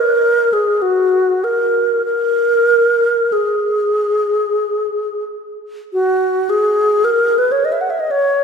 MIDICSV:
0, 0, Header, 1, 2, 480
1, 0, Start_track
1, 0, Tempo, 1158301
1, 341, Tempo, 1242236
1, 819, Time_signature, 3, 2, 24, 8
1, 1781, Tempo, 1372998
1, 2261, Tempo, 1111111
1, 3348, End_track
2, 0, Start_track
2, 0, Title_t, "Alto flute"
2, 0, Program_c, 0, 73
2, 0, Note_on_c, 0, 70, 75
2, 220, Note_on_c, 0, 68, 66
2, 226, Note_off_c, 0, 70, 0
2, 339, Note_on_c, 0, 66, 72
2, 345, Note_off_c, 0, 68, 0
2, 580, Note_on_c, 0, 70, 66
2, 585, Note_off_c, 0, 66, 0
2, 814, Note_off_c, 0, 70, 0
2, 816, Note_on_c, 0, 70, 75
2, 1308, Note_on_c, 0, 68, 58
2, 1313, Note_off_c, 0, 70, 0
2, 2020, Note_off_c, 0, 68, 0
2, 2265, Note_on_c, 0, 66, 78
2, 2509, Note_on_c, 0, 68, 79
2, 2515, Note_off_c, 0, 66, 0
2, 2746, Note_on_c, 0, 70, 81
2, 2752, Note_off_c, 0, 68, 0
2, 2892, Note_on_c, 0, 71, 73
2, 2899, Note_off_c, 0, 70, 0
2, 2950, Note_on_c, 0, 73, 66
2, 2956, Note_off_c, 0, 71, 0
2, 3006, Note_on_c, 0, 75, 59
2, 3013, Note_off_c, 0, 73, 0
2, 3038, Note_on_c, 0, 76, 62
2, 3044, Note_off_c, 0, 75, 0
2, 3077, Note_on_c, 0, 78, 61
2, 3083, Note_off_c, 0, 76, 0
2, 3116, Note_on_c, 0, 76, 57
2, 3122, Note_off_c, 0, 78, 0
2, 3158, Note_on_c, 0, 75, 66
2, 3165, Note_off_c, 0, 76, 0
2, 3206, Note_on_c, 0, 73, 81
2, 3212, Note_off_c, 0, 75, 0
2, 3348, Note_off_c, 0, 73, 0
2, 3348, End_track
0, 0, End_of_file